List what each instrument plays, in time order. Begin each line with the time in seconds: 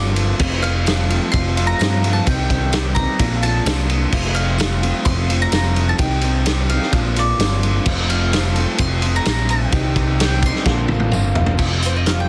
Already playing: picked electric bass G1, overdriven electric guitar A#2 D3 A#3 D4 F4, steel-string acoustic guitar F3 C4, mandolin D5
0.16 ride
0.39 picked electric bass F1, overdriven electric guitar F2 C3 F3 A3 C4 F4, kick, crash
0.62 overdriven electric guitar F3 A3 C4 F4, mandolin F5, ride
0.86 overdriven electric guitar F3 A3 C4 F4, snare, ride, tambourine
1.10 overdriven electric guitar F3 A3 C4 F4, ride
1.32 picked electric bass F1, steel-string acoustic guitar F2 C3 F3 A3 C4 F4, mandolin C6, kick, ride
1.57 overdriven electric guitar F3 A3 C4 F4, ride
1.67 mandolin A#5
1.79 overdriven electric guitar F2 C3 F3 A3 C4 F4, picked electric bass G2, snare, ride, tambourine
2.04 ride
2.13 mandolin A5
2.27 picked electric bass C2, overdriven electric guitar C3 D#3 G3 C4 G4, steel-string acoustic guitar D#4, mandolin G5, kick, ride
2.50 overdriven electric guitar G3 C4 G4, kick, ride
2.73 overdriven electric guitar D#3 G3 C4 G4, snare, ride, tambourine
2.95 overdriven electric guitar G3 C4 G4, steel-string acoustic guitar D#4, mandolin A#5, kick, ride
3.19 picked electric bass A#1, overdriven electric guitar A#2 D3 A#3 D4 F4, steel-string acoustic guitar F3 C4, kick, ride
3.42 overdriven electric guitar A#3 D4 F4, steel-string acoustic guitar C4, mandolin A5, ride
3.65 picked electric bass C2, overdriven electric guitar A#2 D3 A#3 D4 F4, steel-string acoustic guitar F3 C4, snare, ride, tambourine
3.90 ride
4.12 picked electric bass F1, overdriven electric guitar F2 C3 F3 A3 C4 F4, kick, crash
4.35 overdriven electric guitar F3 A3 C4 F4, mandolin F5, ride
4.58 overdriven electric guitar F3 A3 C4 F4, snare, ride, tambourine
4.82 overdriven electric guitar F3 A3 C4 F4, ride
5.05 picked electric bass F1, steel-string acoustic guitar F2 C3 F3 A3 C4 F4, mandolin C6, kick, ride
5.29 overdriven electric guitar F3 A3 C4 F4, ride
5.42 mandolin A#5
5.52 picked electric bass F1, overdriven electric guitar F2 C3 F3 A3 C4 F4, snare, ride, tambourine
5.76 ride
5.89 mandolin A5
5.98 picked electric bass C2, overdriven electric guitar C3 D#3 G3 C4 G4, steel-string acoustic guitar D#4, mandolin G5, kick, ride
6.21 overdriven electric guitar G3 C4 G4, steel-string acoustic guitar D#4, ride
6.46 overdriven electric guitar D#3 G3 C4 G4, snare, ride, tambourine
6.69 overdriven electric guitar G3 C4 G4, steel-string acoustic guitar D#4, mandolin F5, ride
6.82 snare
6.92 picked electric bass A#1, overdriven electric guitar A#2 D3 A#3 D4 F4, steel-string acoustic guitar F3 C4, kick, ride
7.16 overdriven electric guitar A#3 D4 F4, steel-string acoustic guitar C4, mandolin D5, ride
7.39 picked electric bass G1, overdriven electric guitar A#2 D3 A#3 D4 F4, steel-string acoustic guitar F3 C4, snare, ride, tambourine
7.63 ride
7.86 picked electric bass F1, overdriven electric guitar F2 C3 F3 A3 C4 F4, steel-string acoustic guitar A4, kick, crash
8.09 overdriven electric guitar F3 A3 C4 F4, mandolin F5, ride
8.33 overdriven electric guitar F3 A3 C4 F4, snare, ride, tambourine
8.55 overdriven electric guitar F3 A3 C4 F4, steel-string acoustic guitar A4, ride
8.78 picked electric bass F1, steel-string acoustic guitar F2 C3 F3 A3 C4 A4, mandolin C6, kick, ride
9.02 overdriven electric guitar F3 A3 C4 F4, steel-string acoustic guitar A4, ride
9.16 mandolin A#5
9.25 picked electric bass A#1, overdriven electric guitar F2 C3 F3 A3 C4 F4, snare, ride, tambourine
9.29 steel-string acoustic guitar A4
9.49 mandolin G5, ride
9.72 picked electric bass C2, overdriven electric guitar C3 D#3 G3 C4 G4, steel-string acoustic guitar D#4, kick, ride
9.95 overdriven electric guitar G3 C4 G4, kick, ride
10.17 overdriven electric guitar D#3 G3 C4 G4, mandolin G5, snare, ride, tambourine
10.41 overdriven electric guitar G3 C4 G4, steel-string acoustic guitar D#4, kick, ride
10.46 mandolin C6
10.55 snare
10.65 picked electric bass A#1, overdriven electric guitar A#2 D3 A#3 D4 F4, steel-string acoustic guitar F3 C4, kick, snare
10.88 picked electric bass A1, steel-string acoustic guitar F3 C4, overdriven electric guitar A#3 D4 F4, high tom
11.00 high tom
11.11 picked electric bass G1, overdriven electric guitar A#2 D3 A#3 D4 F4, steel-string acoustic guitar F3 C4, mid tom, tambourine
11.35 picked electric bass F1, floor tom
11.46 floor tom
11.59 picked electric bass F1, overdriven electric guitar F2 C3 F3, steel-string acoustic guitar A3 C4 F4, kick, crash
11.82 overdriven electric guitar F2 C3, mandolin C5, closed hi-hat
11.96 mandolin D#5
12.06 overdriven electric guitar F2 C3 F3, steel-string acoustic guitar A3 C4 F4, mandolin F5, snare, closed hi-hat
12.20 mandolin G5